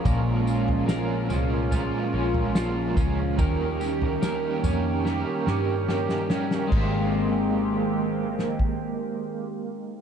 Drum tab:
CC |----------------|----------------|x---------------|
TB |x-x-x-x-x---x-x-|x-x-x-x---------|----------------|
SD |----o-------o---|----o---o-o-oooo|--------o-------|
FT |o--o--o-o--o----|o--o--o---------|----------------|
BD |o-------------o-|o---------------|o--------o------|